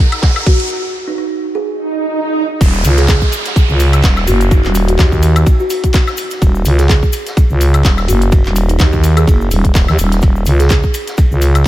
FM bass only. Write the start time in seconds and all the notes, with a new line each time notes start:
2.61 D#1
2.85 C#2
3.69 C#2
4.04 D#1
4.27 F#1
4.65 D#1
4.99 D#2
6.42 D#1
6.65 C#2
7.50 C#2
7.85 D#1
8.08 F#1
8.46 D#1
8.80 D#2
9.27 F#1
9.51 D#1
9.88 D#2
9.99 D#1
10.23 D#1
10.46 C#2
11.31 C#2